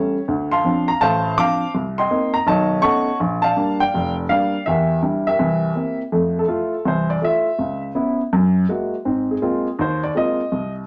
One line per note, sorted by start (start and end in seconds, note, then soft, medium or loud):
0.00 0.16 G3 soft
0.00 0.16 A3 soft
0.00 0.17 C#4 medium
0.00 0.24 C#5 medium
0.00 0.24 E5 medium
0.00 0.11 A5 medium
0.28 0.59 D2 medium
0.51 1.00 F5 medium
0.51 0.99 A5 medium
0.51 0.89 C6 medium
0.64 0.89 F3 medium
0.64 0.90 C4 medium
0.64 0.90 D4 medium
0.88 1.01 A#5 loud
1.01 1.33 A1 medium
1.01 1.32 A2 medium
1.01 1.70 C5 medium
1.01 1.38 F5 medium
1.01 1.35 A5 loud
1.38 1.63 F3 soft
1.38 1.63 C4 soft
1.38 1.63 D4 medium
1.38 1.72 F5 medium
1.38 1.72 A5 medium
1.38 1.71 D6 loud
1.75 2.06 C2 medium
1.98 2.44 D#5 medium
1.98 2.44 G5 medium
1.98 2.35 C6 medium
2.10 2.35 A#3 medium
2.10 2.35 C4 soft
2.10 2.35 D#4 medium
2.34 2.47 A#5 loud
2.47 2.78 B1 medium
2.47 2.78 D#3 medium
2.47 3.17 C#5 medium
2.47 3.17 D#5 medium
2.47 2.82 A5 loud
2.82 3.08 A3 medium
2.82 3.08 B3 soft
2.82 3.08 C#4 soft
2.82 3.08 D#4 medium
2.82 3.17 F#5 medium
2.82 3.17 A5 medium
2.82 3.16 C#6 loud
3.20 3.51 A#1 medium
3.42 3.81 D5 medium
3.42 4.13 F5 medium
3.42 3.77 A5 loud
3.56 3.81 G3 medium
3.56 3.82 A#3 medium
3.56 3.82 D4 medium
3.80 4.30 D5 medium
3.80 4.14 G5 loud
3.94 4.25 F1 medium
4.29 4.55 G3 medium
4.29 4.55 A#3 medium
4.29 4.55 D4 medium
4.29 4.64 D5 medium
4.29 4.67 F5 medium
4.66 4.98 E2 medium
4.66 5.27 G4 medium
4.66 5.27 A#4 medium
4.66 5.00 E5 medium
5.02 5.28 G3 medium
5.02 5.28 D4 medium
5.02 5.28 E4 medium
5.27 5.96 G4 medium
5.27 5.97 A#4 medium
5.27 5.96 E5 loud
5.39 5.71 C2 medium
5.39 5.71 E3 medium
5.75 6.01 A#3 soft
5.75 6.01 C4 soft
5.75 6.01 E4 soft
6.12 6.44 F2 medium
6.12 6.44 A3 medium
6.39 6.83 A4 medium
6.48 6.74 A3 medium
6.48 6.74 E4 soft
6.48 6.74 F4 medium
6.85 7.17 C2 medium
6.85 7.17 E3 medium
6.85 7.10 C5 medium
7.10 7.22 D5 medium
7.21 7.47 A3 soft
7.21 7.47 E4 soft
7.21 7.47 F4 medium
7.21 7.80 E5 medium
7.59 7.90 C#2 medium
7.95 8.20 B3 medium
7.95 8.20 C#4 soft
7.95 8.20 E4 medium
8.33 8.64 F#2 medium
8.69 8.94 G#3 soft
8.69 8.94 A#3 soft
8.69 8.94 E4 soft
8.69 8.94 F#4 medium
9.05 9.37 G#2 medium
9.05 9.37 C4 medium
9.31 9.76 G#4 medium
9.42 9.67 G#3 medium
9.42 9.67 A#3 medium
9.42 9.67 C4 medium
9.42 9.67 F4 medium
9.79 10.10 D#2 medium
9.79 10.03 C5 medium
10.03 10.15 D5 medium
10.15 10.40 G#3 soft
10.15 10.40 A#3 soft
10.15 10.40 C4 soft
10.15 10.40 F4 medium
10.15 10.72 D#5 medium
10.52 10.83 C2 medium